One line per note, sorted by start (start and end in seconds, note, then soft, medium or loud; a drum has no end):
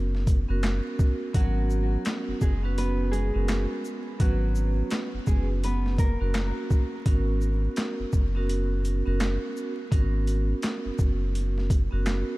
0.00 0.45 F#1 medium
0.00 0.29 B3 loud
0.00 0.30 C#4 medium
0.00 0.30 F#4 medium
0.00 0.30 A#4 loud
0.15 snare soft
0.27 kick loud
0.27 closed hi-hat medium
0.27 shaker medium
0.48 0.81 F#1 loud
0.48 1.28 B3 loud
0.48 1.29 C#4 medium
0.48 1.29 F#4 medium
0.48 1.30 A#4 loud
0.63 finger snap medium
0.63 snare loud
0.63 clap medium
0.63 closed hi-hat medium
0.99 kick loud
0.99 shaker medium
1.33 1.97 G#1 loud
1.33 2.02 F#3 medium
1.33 2.51 B3 loud
1.33 2.51 C#4 medium
1.33 2.02 F#4 loud
1.33 2.51 F#4 medium
1.33 2.52 A#4 loud
1.33 kick loud
1.33 closed hi-hat loud
1.70 shaker medium
2.05 finger snap medium
2.05 snare loud
2.05 clap medium
2.05 closed hi-hat medium
2.28 2.33 F#1 soft
2.41 3.31 F#1 loud
2.41 2.62 G#3 medium
2.41 2.62 G#4 medium
2.41 kick medium
2.41 shaker medium
2.63 3.28 B3 loud
2.63 3.28 C#4 loud
2.63 3.28 F#4 medium
2.63 3.29 B4 loud
2.78 3.10 B3 medium
2.78 3.10 B4 medium
2.78 closed hi-hat medium
3.11 4.16 G#3 medium
3.11 4.15 G#4 medium
3.11 closed hi-hat medium
3.11 shaker medium
3.34 3.66 F#1 loud
3.34 3.99 B3 loud
3.34 3.99 C#4 medium
3.34 3.99 F#4 medium
3.34 4.00 A#4 loud
3.48 finger snap medium
3.48 snare loud
3.48 clap medium
3.48 closed hi-hat medium
3.85 shaker medium
4.19 4.82 G#1 loud
4.19 4.88 F#3 medium
4.19 6.01 B3 loud
4.19 6.01 C#4 medium
4.19 4.87 F#4 loud
4.19 6.01 F#4 medium
4.19 6.02 B4 loud
4.19 kick loud
4.19 closed hi-hat loud
4.55 shaker medium
4.90 finger snap medium
4.90 snare loud
4.90 clap medium
4.90 closed hi-hat medium
5.14 5.19 F#1 medium
5.27 6.17 F#1 medium
5.27 5.48 G#3 medium
5.27 5.47 G#4 medium
5.27 kick medium
5.27 shaker medium
5.64 5.96 B3 medium
5.64 5.96 B4 medium
5.64 closed hi-hat medium
5.86 snare soft
5.98 6.54 A#3 medium
5.98 6.53 A#4 medium
5.98 kick loud
5.98 closed hi-hat medium
5.98 shaker medium
6.19 6.52 F#1 medium
6.19 7.00 A#3 loud
6.19 7.00 C#4 medium
6.19 7.01 F#4 medium
6.19 7.01 A#4 loud
6.34 finger snap medium
6.34 snare loud
6.34 clap loud
6.34 closed hi-hat medium
6.70 kick loud
6.70 shaker medium
7.05 7.68 G#1 loud
7.05 8.22 B3 loud
7.05 8.23 C#4 medium
7.05 8.23 F#4 medium
7.05 8.23 A#4 loud
7.05 kick loud
7.05 closed hi-hat medium
7.41 shaker medium
7.76 finger snap medium
7.76 snare loud
7.76 clap medium
7.76 closed hi-hat medium
8.00 8.05 F#1 medium
8.13 9.02 F#1 medium
8.13 kick medium
8.13 shaker medium
8.35 8.99 B3 loud
8.35 9.00 C#4 medium
8.35 9.00 F#4 medium
8.35 9.00 A#4 loud
8.49 closed hi-hat medium
8.85 closed hi-hat medium
8.85 shaker medium
9.05 9.38 F#1 loud
9.05 9.70 B3 medium
9.05 9.71 C#4 medium
9.05 9.71 F#4 medium
9.05 9.71 A#4 loud
9.20 finger snap medium
9.20 snare loud
9.20 clap loud
9.20 closed hi-hat medium
9.57 shaker medium
9.91 10.54 G#1 loud
9.91 11.72 B3 loud
9.91 11.73 C#4 medium
9.91 11.73 F#4 medium
9.91 11.74 A#4 loud
9.91 kick loud
9.91 closed hi-hat loud
10.27 closed hi-hat medium
10.27 shaker medium
10.62 finger snap medium
10.62 snare loud
10.62 clap medium
10.62 closed hi-hat medium
10.85 10.91 F#1 medium
10.98 11.88 F#1 medium
10.98 kick medium
10.98 shaker medium
11.35 closed hi-hat medium
11.58 snare soft
11.70 kick loud
11.70 closed hi-hat medium
11.70 shaker medium
11.91 12.24 F#1 loud
11.91 12.38 B3 loud
11.91 12.38 C#4 medium
11.91 12.38 F#4 medium
11.91 12.38 A#4 loud
12.06 finger snap medium
12.06 snare loud
12.06 clap medium
12.06 closed hi-hat medium